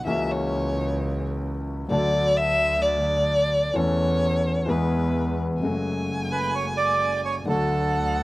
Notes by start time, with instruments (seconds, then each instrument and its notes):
0.05 grand piano C#2 C#3 E3 A#3 C#4 F#4, double bass C#2, violin E5
0.31 violin C#5
1.88 grand piano D2 D3 F#3 A3 D4, double bass D2, violin D5
1.93 grand piano A4
2.37 violin E5
2.82 violin D5
3.74 grand piano E2 E3 A3 C#4 A4, double bass E2, violin C#5
4.66 grand piano E2 E3 G#3 B3, double bass E2, violin B4
4.71 grand piano G#4
5.61 double bass F#1, grand piano F#2 C#3 F#3 G#3 A3, violin G#5
5.65 grand piano F#4
6.32 bandoneon B4
6.55 bandoneon C#5
6.77 bandoneon D5
7.25 bandoneon C#5
7.46 grand piano D2 D3 F#3 A3 F#4, double bass D2, bandoneon A4, violin F#5